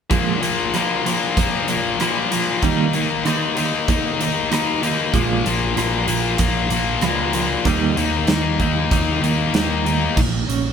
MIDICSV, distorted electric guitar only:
0, 0, Header, 1, 2, 480
1, 0, Start_track
1, 0, Tempo, 629591
1, 82, Time_signature, 4, 2, 24, 8
1, 8180, End_track
2, 0, Start_track
2, 0, Title_t, "Distorted electric guitar"
2, 0, Program_c, 0, 30
2, 77, Note_on_c, 0, 46, 76
2, 79, Note_on_c, 0, 53, 79
2, 87, Note_on_c, 0, 58, 90
2, 304, Note_off_c, 0, 46, 0
2, 313, Note_on_c, 0, 46, 72
2, 317, Note_off_c, 0, 53, 0
2, 320, Note_on_c, 0, 53, 75
2, 322, Note_off_c, 0, 58, 0
2, 325, Note_on_c, 0, 58, 83
2, 562, Note_off_c, 0, 46, 0
2, 571, Note_on_c, 0, 46, 68
2, 577, Note_off_c, 0, 58, 0
2, 580, Note_off_c, 0, 53, 0
2, 580, Note_on_c, 0, 58, 82
2, 583, Note_on_c, 0, 53, 81
2, 799, Note_off_c, 0, 46, 0
2, 808, Note_on_c, 0, 46, 81
2, 810, Note_off_c, 0, 53, 0
2, 813, Note_on_c, 0, 53, 95
2, 818, Note_off_c, 0, 58, 0
2, 821, Note_on_c, 0, 58, 90
2, 1036, Note_off_c, 0, 46, 0
2, 1045, Note_on_c, 0, 46, 72
2, 1048, Note_off_c, 0, 53, 0
2, 1051, Note_on_c, 0, 53, 80
2, 1052, Note_off_c, 0, 58, 0
2, 1055, Note_on_c, 0, 58, 77
2, 1277, Note_off_c, 0, 46, 0
2, 1286, Note_on_c, 0, 46, 69
2, 1287, Note_off_c, 0, 53, 0
2, 1289, Note_off_c, 0, 58, 0
2, 1290, Note_on_c, 0, 53, 66
2, 1292, Note_on_c, 0, 58, 73
2, 1509, Note_off_c, 0, 46, 0
2, 1518, Note_on_c, 0, 46, 68
2, 1528, Note_off_c, 0, 53, 0
2, 1530, Note_off_c, 0, 58, 0
2, 1532, Note_on_c, 0, 53, 74
2, 1533, Note_on_c, 0, 58, 81
2, 1748, Note_off_c, 0, 46, 0
2, 1757, Note_on_c, 0, 46, 61
2, 1763, Note_off_c, 0, 53, 0
2, 1765, Note_off_c, 0, 58, 0
2, 1766, Note_on_c, 0, 53, 71
2, 1768, Note_on_c, 0, 58, 80
2, 1986, Note_off_c, 0, 46, 0
2, 2000, Note_on_c, 0, 51, 80
2, 2004, Note_off_c, 0, 53, 0
2, 2007, Note_off_c, 0, 58, 0
2, 2007, Note_on_c, 0, 58, 89
2, 2011, Note_on_c, 0, 63, 84
2, 2233, Note_off_c, 0, 51, 0
2, 2240, Note_off_c, 0, 58, 0
2, 2240, Note_off_c, 0, 63, 0
2, 2242, Note_on_c, 0, 51, 82
2, 2244, Note_on_c, 0, 58, 73
2, 2249, Note_on_c, 0, 63, 82
2, 2475, Note_off_c, 0, 51, 0
2, 2483, Note_off_c, 0, 58, 0
2, 2484, Note_off_c, 0, 63, 0
2, 2484, Note_on_c, 0, 51, 89
2, 2486, Note_on_c, 0, 58, 83
2, 2493, Note_on_c, 0, 63, 86
2, 2708, Note_off_c, 0, 51, 0
2, 2717, Note_on_c, 0, 51, 77
2, 2718, Note_off_c, 0, 58, 0
2, 2719, Note_off_c, 0, 63, 0
2, 2721, Note_on_c, 0, 58, 88
2, 2728, Note_on_c, 0, 63, 91
2, 2953, Note_off_c, 0, 51, 0
2, 2962, Note_on_c, 0, 51, 73
2, 2965, Note_off_c, 0, 58, 0
2, 2965, Note_off_c, 0, 63, 0
2, 2968, Note_on_c, 0, 58, 79
2, 2975, Note_on_c, 0, 63, 82
2, 3188, Note_off_c, 0, 51, 0
2, 3197, Note_on_c, 0, 51, 63
2, 3204, Note_off_c, 0, 63, 0
2, 3205, Note_off_c, 0, 58, 0
2, 3208, Note_on_c, 0, 58, 75
2, 3213, Note_on_c, 0, 63, 79
2, 3429, Note_off_c, 0, 51, 0
2, 3436, Note_off_c, 0, 58, 0
2, 3437, Note_off_c, 0, 63, 0
2, 3438, Note_on_c, 0, 51, 71
2, 3439, Note_on_c, 0, 58, 87
2, 3446, Note_on_c, 0, 63, 75
2, 3666, Note_off_c, 0, 51, 0
2, 3675, Note_on_c, 0, 51, 65
2, 3678, Note_off_c, 0, 58, 0
2, 3678, Note_off_c, 0, 63, 0
2, 3681, Note_on_c, 0, 58, 77
2, 3687, Note_on_c, 0, 63, 82
2, 3905, Note_off_c, 0, 51, 0
2, 3910, Note_on_c, 0, 46, 80
2, 3911, Note_off_c, 0, 63, 0
2, 3913, Note_off_c, 0, 58, 0
2, 3916, Note_on_c, 0, 53, 90
2, 3918, Note_on_c, 0, 58, 84
2, 4148, Note_off_c, 0, 46, 0
2, 4157, Note_on_c, 0, 46, 68
2, 4161, Note_off_c, 0, 58, 0
2, 4163, Note_off_c, 0, 53, 0
2, 4164, Note_on_c, 0, 58, 88
2, 4167, Note_on_c, 0, 53, 82
2, 4378, Note_off_c, 0, 46, 0
2, 4387, Note_on_c, 0, 46, 74
2, 4389, Note_off_c, 0, 53, 0
2, 4392, Note_on_c, 0, 53, 82
2, 4394, Note_off_c, 0, 58, 0
2, 4397, Note_on_c, 0, 58, 91
2, 4610, Note_off_c, 0, 46, 0
2, 4620, Note_on_c, 0, 46, 82
2, 4625, Note_off_c, 0, 53, 0
2, 4625, Note_off_c, 0, 58, 0
2, 4628, Note_on_c, 0, 53, 87
2, 4628, Note_on_c, 0, 58, 90
2, 4858, Note_off_c, 0, 46, 0
2, 4867, Note_on_c, 0, 46, 83
2, 4868, Note_off_c, 0, 53, 0
2, 4871, Note_on_c, 0, 53, 91
2, 4876, Note_off_c, 0, 58, 0
2, 4879, Note_on_c, 0, 58, 94
2, 5102, Note_off_c, 0, 46, 0
2, 5112, Note_on_c, 0, 46, 65
2, 5119, Note_off_c, 0, 53, 0
2, 5119, Note_off_c, 0, 58, 0
2, 5122, Note_on_c, 0, 53, 70
2, 5122, Note_on_c, 0, 58, 78
2, 5352, Note_off_c, 0, 46, 0
2, 5361, Note_on_c, 0, 46, 73
2, 5363, Note_off_c, 0, 53, 0
2, 5366, Note_on_c, 0, 53, 71
2, 5371, Note_off_c, 0, 58, 0
2, 5374, Note_on_c, 0, 58, 77
2, 5584, Note_off_c, 0, 46, 0
2, 5593, Note_on_c, 0, 46, 71
2, 5595, Note_off_c, 0, 53, 0
2, 5598, Note_on_c, 0, 53, 75
2, 5599, Note_off_c, 0, 58, 0
2, 5602, Note_on_c, 0, 58, 73
2, 5823, Note_off_c, 0, 46, 0
2, 5839, Note_off_c, 0, 53, 0
2, 5839, Note_on_c, 0, 51, 81
2, 5842, Note_off_c, 0, 58, 0
2, 5842, Note_on_c, 0, 58, 82
2, 5849, Note_on_c, 0, 63, 90
2, 6063, Note_off_c, 0, 51, 0
2, 6067, Note_off_c, 0, 58, 0
2, 6070, Note_off_c, 0, 63, 0
2, 6072, Note_on_c, 0, 51, 85
2, 6076, Note_on_c, 0, 58, 78
2, 6079, Note_on_c, 0, 63, 89
2, 6302, Note_off_c, 0, 51, 0
2, 6310, Note_off_c, 0, 63, 0
2, 6311, Note_on_c, 0, 51, 80
2, 6315, Note_off_c, 0, 58, 0
2, 6319, Note_on_c, 0, 63, 90
2, 6325, Note_on_c, 0, 58, 80
2, 6545, Note_off_c, 0, 51, 0
2, 6551, Note_off_c, 0, 58, 0
2, 6554, Note_off_c, 0, 63, 0
2, 6555, Note_on_c, 0, 51, 85
2, 6560, Note_on_c, 0, 58, 94
2, 6563, Note_on_c, 0, 63, 97
2, 6786, Note_off_c, 0, 58, 0
2, 6787, Note_off_c, 0, 51, 0
2, 6792, Note_off_c, 0, 63, 0
2, 6795, Note_on_c, 0, 58, 89
2, 6796, Note_on_c, 0, 51, 79
2, 6802, Note_on_c, 0, 63, 89
2, 7019, Note_off_c, 0, 51, 0
2, 7024, Note_off_c, 0, 58, 0
2, 7026, Note_off_c, 0, 63, 0
2, 7028, Note_on_c, 0, 51, 66
2, 7033, Note_on_c, 0, 58, 83
2, 7035, Note_on_c, 0, 63, 74
2, 7263, Note_off_c, 0, 51, 0
2, 7270, Note_off_c, 0, 58, 0
2, 7272, Note_on_c, 0, 51, 71
2, 7274, Note_off_c, 0, 63, 0
2, 7280, Note_on_c, 0, 58, 89
2, 7283, Note_on_c, 0, 63, 87
2, 7501, Note_off_c, 0, 51, 0
2, 7505, Note_off_c, 0, 58, 0
2, 7507, Note_off_c, 0, 63, 0
2, 7510, Note_on_c, 0, 51, 68
2, 7514, Note_on_c, 0, 58, 72
2, 7516, Note_on_c, 0, 63, 77
2, 7740, Note_off_c, 0, 51, 0
2, 7742, Note_off_c, 0, 58, 0
2, 7743, Note_off_c, 0, 63, 0
2, 8180, End_track
0, 0, End_of_file